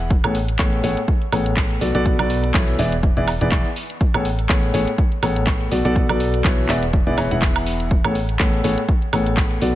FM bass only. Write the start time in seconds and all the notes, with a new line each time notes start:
Already playing: E1
0.24 A1
0.59 A1
0.84 A1
1.33 A1
1.81 B1
1.95 B1
2.19 B1
2.54 B1
2.79 E1
3.17 E1
3.41 E1
3.52 E1
4.14 A1
4.50 A1
4.74 A1
5.23 A1
5.72 B1
5.85 B1
6.09 B1
6.45 B1
6.69 E1
7.07 E1
7.18 E1
7.31 E1
8.05 A1
8.40 A1
8.64 A1
9.13 A1
9.62 B1